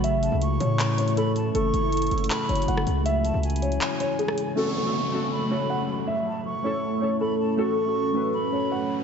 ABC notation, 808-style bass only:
X:1
M:4/4
L:1/16
Q:1/4=159
K:F#m
V:1 name="808-style bass" clef=bass
A,,,3 C,,3 A,,8- A,,2 | F,,,2 F,,,4 F,,,2 z2 F,,,2 F,,,2 C,,2- | C,,3 C,,4- C,, z8 | z16 |
z16 | z16 |]